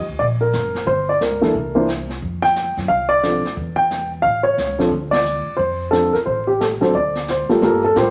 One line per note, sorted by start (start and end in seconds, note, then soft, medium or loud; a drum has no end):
0.08 0.19 D2 medium
0.19 0.51 A#1 medium
0.19 0.24 D5 medium
0.19 brush sweep soft
0.19 kick soft
0.41 0.84 A#4 medium
0.53 0.85 F#1 medium
0.53 snare medium
0.53 hi-hat pedal medium
0.75 snare soft
0.87 1.18 G1 medium
0.87 1.08 C5 medium
0.87 brush sweep soft
0.87 kick soft
1.09 1.21 D5 medium
1.21 1.52 C#2 medium
1.21 1.84 A#4 medium
1.21 snare medium
1.21 hi-hat pedal soft
1.41 1.53 E3 medium
1.41 1.53 A#3 medium
1.41 1.53 D4 medium
1.41 1.53 A4 medium
1.41 snare soft
1.55 2.19 C2 medium
1.55 brush sweep soft
1.55 kick soft
1.75 1.86 E3 medium
1.75 1.86 A#3 medium
1.75 1.87 D4 medium
1.75 1.87 C5 medium
1.89 snare medium
1.89 hi-hat pedal medium
2.09 snare soft
2.22 2.73 F2 medium
2.22 brush sweep soft
2.22 kick soft
2.42 2.74 G5 loud
2.42 snare soft
2.56 snare medium
2.56 hi-hat pedal medium
2.77 2.88 F#2 medium
2.77 snare soft
2.88 3.40 C2 medium
2.88 3.10 F5 medium
2.88 brush sweep soft
2.88 kick soft
3.09 3.52 D5 medium
3.23 3.42 F3 soft
3.23 3.42 C4 soft
3.23 3.42 D4 soft
3.23 3.42 A4 soft
3.23 snare medium
3.23 hi-hat pedal soft
3.44 muted upright bass stroke soft
3.44 snare soft
3.56 4.21 E2 medium
3.56 brush sweep soft
3.56 kick soft
3.76 4.08 G5 medium
3.91 snare medium
3.91 hi-hat pedal medium
4.22 4.56 A1 medium
4.22 4.43 F5 medium
4.22 brush sweep soft
4.22 kick soft
4.43 4.87 C#5 medium
4.57 4.89 C#2 medium
4.57 snare medium
4.57 hi-hat pedal medium
4.79 4.90 F3 medium
4.79 4.91 C4 medium
4.79 4.90 D4 medium
4.79 4.91 A4 medium
4.79 snare soft
4.91 5.43 D2 medium
4.91 brush sweep soft
4.91 kick soft
5.11 5.60 D5 medium
5.11 snare medium
5.11 ride medium
5.25 hi-hat pedal medium
5.46 muted upright bass stroke soft
5.57 6.10 F2 medium
5.57 5.93 C5 medium
5.57 brush sweep soft
5.57 kick soft
5.91 6.12 F3 medium
5.91 6.12 C4 soft
5.91 6.12 D4 soft
5.91 6.14 A4 medium
5.91 snare medium
5.91 hi-hat pedal soft
6.13 6.18 A#4 medium
6.13 muted upright bass stroke soft
6.13 snare soft
6.26 6.78 A1 medium
6.26 6.48 C5 medium
6.26 brush sweep soft
6.26 kick soft
6.47 6.60 G4 medium
6.61 6.66 A4 medium
6.61 snare medium
6.61 hi-hat pedal soft
6.81 6.93 F#3 medium
6.81 6.92 C4 medium
6.81 6.93 D4 medium
6.81 6.93 A4 medium
6.81 6.95 C5 medium
6.81 muted upright bass stroke soft
6.81 snare soft
6.95 7.45 D2 medium
6.95 7.46 D5 medium
6.95 brush sweep soft
6.95 kick soft
7.15 snare soft
7.28 7.64 C5 medium
7.28 snare medium
7.28 hi-hat pedal medium
7.49 7.60 G3 medium
7.49 7.61 A#3 soft
7.49 7.61 F4 medium
7.49 7.61 A4 medium
7.49 muted upright bass stroke soft
7.49 snare soft
7.62 7.95 G2 medium
7.62 7.81 G3 medium
7.62 7.81 A#3 medium
7.62 7.81 F4 medium
7.62 7.81 A4 medium
7.62 7.84 A#4 medium
7.62 brush sweep soft
7.62 kick soft
7.62 snare soft
7.84 7.97 A4 medium
7.96 8.10 A2 medium
7.96 8.10 G3 medium
7.96 8.10 F4 medium
7.96 8.10 G4 medium
7.96 8.10 A#4 medium
7.96 8.10 C5 medium
7.96 kick soft
7.96 snare medium
7.96 hi-hat pedal medium